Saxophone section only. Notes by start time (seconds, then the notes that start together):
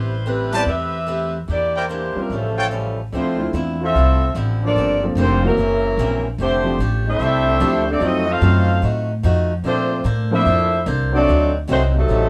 Already playing: G3 E4 B4 C5
0.28 G3 C4 E4 B4
0.55 B3 E4 G4 D5
0.69 C4 G4 B4 E5
1.51 A#3 E4 G4 D5
1.77 A#3 E4 G4 C5
2.20 G3 D4 E4 A#4
2.35 G3 C#4 F4 A4
3.15 A3 E4 F4 C5
3.84 C4 F4 A4 E5
4.66 A#3 F4 A4 D5
5.20 A#3 F4 A4 C5
5.47 F#3 C#4 E4 A#4
6.42 A3 D4 G4 C5
7.09 D4 A4 C5 E5
7.91 C4 G4 A4 D5
8.04 C4 F#4 A4 D#5
8.32 D#4 A4 C5 F5
9.67 A3 D4 F4 C5
10.34 D4 A4 C5 E5
11.15 C4 F#4 A4 D5
11.71 A3 D#4 F#4 C5
11.98 F#3 C4 D#4 A4